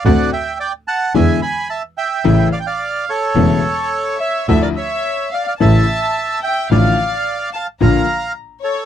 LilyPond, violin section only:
\new Staff \with { instrumentName = "Violin section" } { \time 4/4 \key d \minor \tempo 4 = 109 r1 | r2. r8 e''8 | e''16 d''16 e''4 f''16 f''16 a''4. g''8 | f''4. a''8 bes''4 r8 cis''8 | }